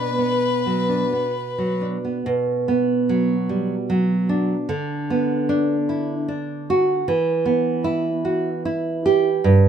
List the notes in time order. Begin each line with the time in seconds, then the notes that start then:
Already playing: B2 D4 B4
0.18 B3
0.66 F#3
0.89 D4
1.13 B3
1.58 F#3
1.81 D4
2.05 B3
2.26 B2
2.68 B3
3.09 F#3
3.49 G3
3.90 F#3
4.29 D4
4.69 D3
5.10 B3
5.49 D4
5.89 E4
6.28 D4
6.70 F#4
7.08 E3
7.46 B3
7.84 E4
8.25 F#4
8.65 E4
9.06 G4
9.44 G2